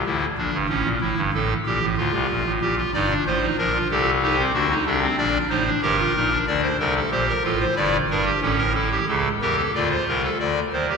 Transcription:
0.06 D2 D3 E4
0.38 A#1 A#2 D4
0.53 G1 G2
0.69 A1 A2 C#4
0.84 A#1 A#2
1.01 A1 A2 E4
1.17 G1 G2
1.34 A1 A2 A4
1.66 A#1 A#2 G4
1.82 A1 A2
1.97 D2 D3 F4
2.13 C2 C3
2.30 A#1 A#2
2.46 A1 A2
2.61 A#1 A#2 G4
2.78 F4
2.94 G1 G2 D#4 D5
3.11 D4
3.26 A1 A2 F4 C5
3.43 D#4
3.58 A#1 A#2 D4 A#4
3.75 F4
3.91 C2 C3 G4 A4
4.23 D#4 G4
4.38 C4
4.54 D2 D3 D4 F#4
4.71 D#4
4.86 C2 C3 D4 A4
5.02 C4
5.18 A#1 A#2 D4 D5
5.49 A1 A2 D#4 C5
5.67 D4
5.82 G1 G2 G4 A#4
5.99 F4
6.16 A#1 A#2 D#4
6.32 D4
6.47 D2 D3 D4 D5
6.63 C5
6.79 C2 C3 A4 A#4
6.96 A4
7.11 A#1 A#2 G4 C5
7.29 A#4
7.44 A1 A2 F4 A4
7.60 C5
7.76 G1 G2 E4 D5
8.10 G1 G2 D4 A#4
8.25 G4
8.42 A1 A2 C#4 A4
8.58 A#4
8.75 E4 A4
8.91 G4
9.08 C#2 C#3 A4
9.41 E2 E3 G4 A#4
9.58 A4
9.75 D2 D3 F4 D5
9.91 C5
10.08 C2 C3 A#4
10.23 A4
10.40 D2 D3 D5
10.73 D#2 D#3 C5
10.90 G4

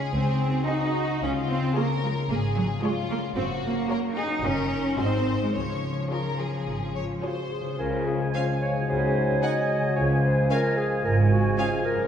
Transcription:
Already playing: C#3 C#4 F4 G#4 C#5
0.13 C#2 C#3 C4
0.32 D#4
0.50 F#4
0.67 D#4 F#4 G#4 D#5
0.86 D#5
1.04 F#4
1.22 C#2 C#3 C#4 F4
1.40 C#4
1.49 C4
1.58 F4
1.76 A#3 F4 G#4 A#4 C#5
1.95 C#5
2.03 G#3
2.12 F4
2.30 G#1 G#3 A#3 G#4
2.48 C#4
2.56 F#3
2.65 F4
2.83 G#3 F4 G#4 C#5
3.01 C#5
3.10 A#3
3.19 F4
3.36 F#1 F#2 C4 F#4
3.54 C#4
3.62 A#3
3.72 F#4
3.90 F#4 A#4 C#5
4.08 C#5
4.16 D#4 G#4
4.26 F#4
4.43 F#1 F#2 C#4 D#4 F#4 A#4 D#5
4.62 D#4
4.80 F#4 A#4
4.98 G#1 G#2 C4 D#4 F#4 G#4 C5 D#5
5.17 D#4
5.35 F#4 G#4
5.41 G#3
5.54 C#2 C#3 F3 C#5
5.74 C#4
5.93 F4
6.11 F4 G#4 A#4 C#5
6.30 C#5
6.40 G#4
6.48 F4
6.67 G#1 G#3
6.85 C#4
6.95 F4 C#5
7.04 F4
7.23 F4 F#4 G#4 C5 C#5
7.42 C#5
7.52 G#4
7.61 C#3 F4
7.65 C#4
7.70 F4
7.74 G#4
7.79 C#2 C#3 F3 G#3 F4 A#4 G#5
8.07 G#4
8.34 C#4 C5 F5 G#5
8.62 C#5
8.70 C#3
8.74 D#4
8.79 F#4
8.83 G#4
8.88 C#2 C#3 F#3 F#4 C5
9.42 D#4 D#5 F#5 G#5
9.78 C#3
9.82 C#4
9.87 F4
9.91 G#4
9.96 C#2 C#3 F3 F4 C#5
10.24 C5
10.50 C#4 A#4 F5 G#5
10.78 G#4
11.04 G#1 G#2 A#4
11.32 F#4
11.58 C#4 G#4 F5 G#5
11.85 A#4
11.94 F#2
11.99 C#4
12.03 F4

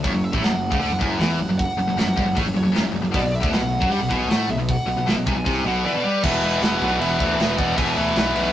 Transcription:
0.04 F#1 F#2 C#5, kick, open hi-hat
0.12 F#1 F#2
0.24 E5
0.33 A1 A2, kick
0.41 F#1 F#2 F#5, snare, open hi-hat
0.51 F#1 F#2
0.71 C#2 C#3, kick
0.80 D2 D3 F#5, open hi-hat
0.89 F#1 F#2
0.99 F#1 F#2 G#5, kick
1.18 E2 E3 F#5, snare, open hi-hat
1.38 F#1 F#2
1.48 F#1 F#2
1.58 F#5, kick, open hi-hat
1.77 F#1 F#2
1.87 F#1 F#2
1.96 F#1 F#2 F#5, snare, open hi-hat
2.06 F#1 F#2
2.16 G1 G2, kick
2.26 F#1 F#2
2.35 A1 A2 C#5, kick, open hi-hat
2.45 F#1 F#2
2.54 F#1 F#2 C#5
2.63 F#1 F#2
2.72 F#1 F#2, open hi-hat
2.76 snare
2.83 F#1 F#2
2.92 F#1 F#2
2.96 F#2
3.02 F#1 F#2
3.12 B1 B2 D5, kick, open hi-hat
3.22 B1 B2
3.35 E5
3.41 D2 D3, kick
3.50 B1 B2, snare, open hi-hat
3.55 F#5
3.61 B1 B2
3.80 F#2 F#3, kick
3.89 G2 G3 F#5, open hi-hat
4.00 B1 B2
4.09 B1 B2 G#5, kick
4.28 A2 A3 F#5, snare, open hi-hat
4.48 B1 B2 E5
4.57 B1 B2
4.69 F#5, kick, open hi-hat
4.86 B1 B2
4.97 B1 B2
5.06 B1 B2, snare, open hi-hat
5.17 B1 B2
5.26 C2 C3 G#5, kick
5.36 B1 B2
5.45 C2 C3, kick, open hi-hat
5.65 B1 B2 F#5
5.85 E3 B4 D5
5.94 B2
6.03 G3
6.23 E1 E2 B2 E3 B4 E5, kick, crash
6.42 E1 E2 B2 E3, crash
6.61 E1 E2 B2 E3 B4 F#5, snare, crash
6.80 B1 E2 B2 E3, crash
6.99 E1 E2 B2 E3 B4 E5, crash
7.19 D2 E2 B2 E3, kick, crash
7.38 E1 E2 B2 E3, snare, crash
7.58 E1 E2 B2 E3 D5 F#5, kick, crash
7.76 E1 E2 B2 E3 E5 G#5, kick, crash
7.96 D2 E2 B2 E3 B4 E5, crash
8.16 B1 E2 B2 E3, snare, crash
8.35 B1 E2 B2 E3, crash

